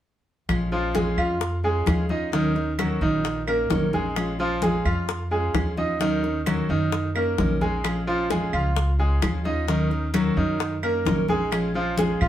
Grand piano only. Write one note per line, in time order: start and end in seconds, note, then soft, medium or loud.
0.72 0.91 F3 medium
0.72 0.91 F4 medium
0.95 1.14 G#3 medium
0.95 1.14 G#4 medium
1.18 1.56 F4 medium
1.18 1.56 F5 medium
1.64 2.02 G#3 medium
1.64 2.02 G#4 medium
2.10 2.29 D#4 medium
2.10 2.29 D#5 medium
2.33 2.71 D#3 medium
2.33 2.71 D#4 medium
2.79 2.98 F#3 medium
2.79 2.98 F#4 medium
3.02 3.40 D#3 medium
3.02 3.40 D#4 medium
3.48 3.85 A#3 medium
3.48 3.86 A#4 medium
3.94 4.32 G#3 medium
3.94 4.32 G#4 medium
4.40 4.59 F3 medium
4.40 4.59 F4 medium
4.63 4.81 G#3 medium
4.63 4.82 G#4 medium
4.85 5.23 F4 medium
4.85 5.23 F5 medium
5.31 5.69 G#3 medium
5.31 5.69 G#4 medium
5.78 5.96 D#4 medium
5.78 5.97 D#5 medium
6.01 6.38 D#3 medium
6.01 6.39 D#4 medium
6.47 6.65 F#3 medium
6.47 6.66 F#4 medium
6.70 7.07 D#3 medium
6.70 7.07 D#4 medium
7.15 7.53 A#3 medium
7.15 7.53 A#4 medium
7.61 7.99 G#3 medium
7.61 7.99 G#4 medium
8.07 8.26 F3 medium
8.07 8.26 F4 medium
8.30 8.49 G#3 medium
8.30 8.49 G#4 medium
8.53 8.91 F4 medium
8.53 8.91 F5 medium
8.99 9.37 G#3 medium
8.99 9.37 G#4 medium
9.45 9.64 D#4 medium
9.45 9.64 D#5 medium
9.68 10.06 D#3 medium
9.68 10.06 D#4 medium
10.14 10.33 F#3 medium
10.14 10.33 F#4 medium
10.37 10.75 D#3 medium
10.37 10.75 D#4 medium
10.83 11.21 A#3 medium
10.83 11.21 A#4 medium
11.29 11.67 G#3 medium
11.29 11.67 G#4 medium
11.75 11.94 F3 medium
11.75 11.94 F4 medium
11.98 12.17 G#3 medium
11.98 12.17 G#4 medium
12.21 12.28 F4 medium
12.21 12.28 F5 medium